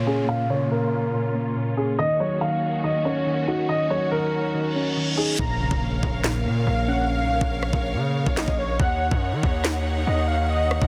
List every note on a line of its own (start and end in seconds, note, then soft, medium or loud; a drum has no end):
0.00 0.29 A#2 medium
0.00 1.95 A#2 medium
0.00 0.50 C#3 medium
0.00 0.71 A#3 medium
0.00 1.95 A#3 medium
0.00 1.95 C#4 medium
0.00 1.95 F4 medium
0.00 downlifter medium
0.07 1.14 C#4 medium
0.07 0.24 G#4 medium
0.29 0.70 A#2 medium
0.29 0.46 F5 loud
0.50 1.56 C#3 medium
0.50 0.67 C#5 medium
0.71 1.12 A#2 medium
0.71 1.73 A#4 medium
1.14 1.55 A#2 medium
1.35 1.99 A#3 medium
1.56 1.99 A#2 medium
1.77 1.99 C#4 medium
1.77 1.94 G#4 medium
1.99 5.36 D#2 medium
1.99 5.36 D#3 medium
1.99 2.40 D#3 medium
1.99 5.36 C#4 medium
1.99 5.36 F#4 medium
1.99 2.16 D#5 loud
2.20 3.26 F#3 medium
2.20 2.37 C#5 medium
2.41 2.83 D#3 medium
2.41 2.81 F5 medium
2.84 3.25 D#3 medium
2.84 3.01 D#5 medium
3.05 4.11 C#4 medium
3.05 3.45 C#5 medium
3.26 3.68 D#3 medium
3.48 4.54 D#4 medium
3.48 3.65 F#4 medium
3.69 4.10 D#3 medium
3.69 3.86 D#5 medium
3.90 4.97 F#3 medium
3.90 4.07 C#5 medium
4.11 4.53 D#3 medium
4.11 5.14 A#4 medium
4.54 4.96 D#3 medium
4.54 reverse cymbal medium
4.75 5.39 C#4 medium
4.97 5.39 D#3 medium
5.17 5.39 D#4 medium
5.17 5.35 G#4 medium
5.39 5.70 A#1 loud
5.39 5.81 A#2 loud
5.39 8.76 A#3 medium
5.39 8.76 A#4 medium
5.39 10.87 C#5 medium
5.39 8.76 F5 medium
5.39 5.79 A#5 loud
5.39 kick loud
5.39 impact medium
5.60 6.67 C#3 medium
5.71 6.02 A#1 loud
5.71 kick loud
5.82 6.23 A#2 medium
6.03 6.47 A#1 loud
6.03 kick medium
6.24 6.66 A#2 medium
6.24 snare loud
6.24 clap medium
6.46 6.66 A#2 loud
6.46 7.09 A#3 medium
6.67 7.22 A#1 loud
6.67 7.09 A#2 medium
6.67 6.87 F5 medium
6.88 7.09 C#4 medium
6.88 7.08 F#5 medium
7.10 7.50 F5 loud
7.20 7.40 B1 loud
7.41 7.72 A#1 loud
7.41 kick loud
7.63 cross-stick medium
7.73 7.96 A#1 loud
7.73 kick medium
7.94 8.25 C#3 loud
8.26 8.47 A#1 loud
8.26 kick medium
8.37 8.57 D#5 medium
8.37 snare loud
8.37 clap medium
8.48 8.78 A#1 loud
8.48 kick loud
8.59 8.79 C#5 medium
8.80 9.10 D#2 loud
8.80 10.87 D#3 medium
8.80 10.87 D#4 medium
8.80 10.87 F#5 medium
8.80 9.20 F#5 loud
8.80 kick loud
9.11 9.34 F#2 loud
9.11 kick loud
9.33 9.43 D#3 loud
9.43 10.05 D#2 loud
9.43 kick medium
9.64 snare loud
9.64 clap medium
10.07 10.79 D#2 loud
10.07 10.27 D#5 medium
10.28 10.48 F5 medium
10.50 10.87 D#5 medium
10.71 cross-stick medium
10.82 10.87 D#2 loud
10.82 kick loud